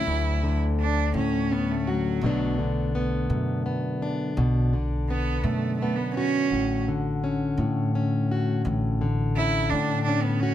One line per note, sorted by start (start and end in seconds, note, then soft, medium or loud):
0.00 0.42 D3 medium
0.00 2.22 F#3 soft
0.00 0.58 E4 loud
0.00 1.45 F#4 medium
0.07 1.10 D2 medium
0.07 2.22 D2 medium
0.43 2.22 D3 medium
0.80 1.13 D4 medium
1.14 2.22 A2 medium
1.14 2.18 D3 medium
1.14 1.54 C#4 medium
1.51 1.73 B3 medium
1.51 2.18 C#4 medium
1.71 1.91 A3 medium
1.87 2.59 F#3 medium
1.87 2.26 F#4 medium
2.21 3.25 B1 medium
2.21 2.58 B2 medium
2.21 2.57 D3 medium
2.21 4.41 A3 medium
2.25 2.95 B3 medium
2.25 4.02 D4 medium
2.58 4.72 D3 medium
2.95 3.65 B3 medium
3.30 4.33 F#2 medium
3.30 4.33 B2 medium
3.66 4.33 B3 medium
4.02 6.17 D4 medium
4.37 5.40 B1 medium
4.37 4.73 B2 medium
4.73 6.87 D3 medium
5.09 5.45 B3 medium
5.09 5.81 B3 medium
5.44 6.48 F#2 medium
5.44 6.47 B2 medium
5.44 5.77 A3 medium
5.78 5.97 A3 medium
5.82 6.48 B3 medium
5.96 6.14 B3 medium
6.15 6.83 C#4 loud
6.15 8.31 F#4 medium
6.50 7.54 A1 medium
6.50 6.87 A2 medium
6.88 9.00 D3 medium
7.24 7.95 C#4 medium
7.57 8.61 A2 medium
7.57 8.65 A2 medium
7.95 9.04 C#4 medium
8.31 8.62 F#4 medium
8.65 9.68 A1 medium
8.65 9.01 A2 medium
9.01 10.54 D3 medium
9.37 10.08 C#4 medium
9.37 9.71 E4 loud
9.70 10.54 A2 medium
9.70 10.04 D4 medium
10.04 10.54 C#4 medium
10.04 10.24 D4 medium
10.22 10.42 B3 medium
10.40 10.54 C#4 medium
10.40 10.54 F#4 medium